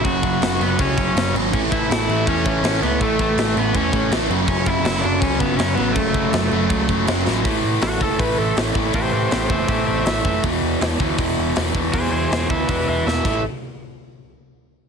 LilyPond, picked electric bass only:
\new Staff \with { instrumentName = "Picked electric bass" } { \clef bass \time 4/4 \key a \major \tempo 4 = 161 fis,,4 fis,,8 fis,,8 cis,8 fis,,8 fis,,8 gis,,8 | a,,4 a,,8 a,,8 e,8 a,,8 a,,8 cis,8 | a,,4 a,,8 a,,8 e,8 a,,8 a,,8 fis,,8 | fis,,4 fis,,8 fis,,8 cis,8 fis,,8 fis,,8 a,,8 |
fis,,4 fis,,8 fis,,8 cis,8 fis,,8 fis,,8 a,,8 | a,,8 a,8 a,,8 fis,,8 a,,8 a,,8 a,,8 a,,8 | a,,8 a,8 a,,8 fis,,8 a,,8 a,,8 a,,8 fis,,8 | e,,8 e,8 e,,8 d,8 e,,8 e,,8 e,,8 e,,8 |
e,,8 e,8 e,,8 d,8 e,,8 e,,8 e,,8 a,,8 | r1 | }